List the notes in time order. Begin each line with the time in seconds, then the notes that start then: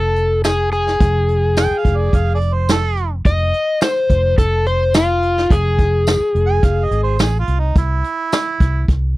Already playing: F1 A4
0.16 closed hi-hat
0.44 G#4, snare, closed hi-hat, tambourine
0.72 G#4, closed hi-hat
0.87 snare
1.00 F1, kick, closed hi-hat
1.29 closed hi-hat
1.57 G5, snare, closed hi-hat, tambourine
1.71 muted fingered electric bass stroke
1.78 F5
1.85 F1, kick, closed hi-hat
1.97 D5
2.13 F1 F5, kick, closed hi-hat
2.35 D5
2.41 closed hi-hat
2.54 C5
2.69 A4, snare, closed hi-hat, tambourine
2.97 closed hi-hat
3.25 F1 D#5, kick, closed hi-hat
3.53 closed hi-hat
3.81 C5, snare, closed hi-hat, tambourine
4.10 F1, kick, closed hi-hat
4.38 F1 A4, kick, closed hi-hat
4.66 C5, closed hi-hat
4.94 F4, snare, closed hi-hat, tambourine
5.22 closed hi-hat
5.37 snare
5.50 F1 G#4, kick, closed hi-hat
5.79 kick, closed hi-hat
6.07 snare, closed hi-hat, tambourine
6.20 muted fingered electric bass stroke
6.35 F1, closed hi-hat
6.46 G#5
6.63 F1 F5, kick, closed hi-hat
6.84 D#5
6.91 G#1, closed hi-hat
7.03 C5
7.19 A1 G#4, snare, closed hi-hat, tambourine
7.40 F4
7.47 C2, closed hi-hat
7.59 D#4
7.76 C2 E4, kick, closed hi-hat
8.04 closed hi-hat
8.32 snare, closed hi-hat, tambourine
8.60 C2, kick, closed hi-hat
8.88 C2, kick, closed hi-hat